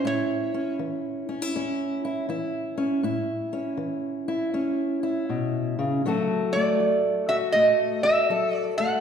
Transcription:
0.00 0.54 C#4 medium
0.04 0.74 A2 medium
0.04 1.28 E4 medium
0.04 0.76 C#5 medium
0.54 1.29 C#4 medium
0.79 1.49 E3 medium
1.29 1.42 C#4 medium
1.42 2.03 E4 medium
1.55 2.24 E2 medium
1.55 2.76 C#4 medium
2.05 2.28 E4 medium
2.29 2.98 E3 medium
2.29 3.01 E4 medium
2.78 3.00 C#4 medium
3.03 3.73 A2 medium
3.03 4.27 E4 medium
3.53 4.53 C#4 medium
3.77 4.47 E3 medium
4.28 5.02 E4 medium
4.54 5.23 E2 medium
4.54 6.00 C#4 medium
5.03 6.00 E4 medium
5.29 5.78 B2 medium
5.79 6.04 C#3 medium
6.05 6.74 D3 medium
6.05 6.80 F#3 medium
6.05 6.55 A3 medium
6.05 7.29 F#4 medium
6.05 8.30 A4 medium
6.53 7.54 A3 medium
6.53 7.30 D5 medium
6.80 7.49 F#3 medium
7.29 8.04 F#4 medium
7.29 7.35 E5 medium
7.52 8.23 A2 medium
7.52 8.79 A3 medium
7.52 8.03 D#5 medium
8.03 9.00 F#4 medium
8.03 8.55 E5 medium
8.30 8.99 F#3 medium
8.30 9.00 A4 medium
8.55 8.74 D5 medium
8.78 9.00 A3 medium
8.78 9.00 F#5 medium

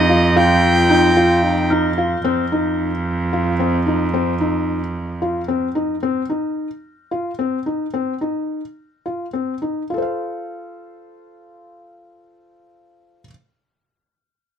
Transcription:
0.00 2.22 F2 medium
0.00 0.36 G4 loud
0.00 0.39 D#5 medium
0.00 0.88 G6 medium
0.00 1.74 A#6 medium
0.09 0.28 F4 medium
0.36 0.74 F4 medium
0.36 1.72 G5 medium
0.62 1.45 F4 medium
0.90 1.09 D#4 medium
0.90 2.48 G6 soft
1.17 1.54 F4 medium
1.44 1.98 D#4 medium
1.70 1.90 D#4 medium
1.70 2.48 F6 medium
1.98 2.17 F4 medium
2.24 5.99 F2 medium
2.24 2.43 C4 medium
2.52 2.90 D#4 medium
3.33 3.52 F4 medium
3.60 3.78 C4 medium
3.86 4.05 D#4 medium
4.14 4.33 C4 medium
4.40 4.78 D#4 medium
5.22 5.41 F4 medium
5.48 5.67 C4 medium
5.75 5.94 D#4 soft
6.03 6.22 C4 medium
6.30 6.67 D#4 medium
7.11 7.30 F4 medium
7.39 7.58 C4 medium
7.66 7.85 D#4 soft
7.94 8.13 C4 medium
8.21 8.60 D#4 soft
9.06 9.25 F4 soft
9.33 9.53 C4 medium
9.62 9.82 D#4 soft
9.90 13.19 F4 soft
9.90 13.22 A4 soft
9.98 13.26 C5 soft
10.02 13.31 F5 soft

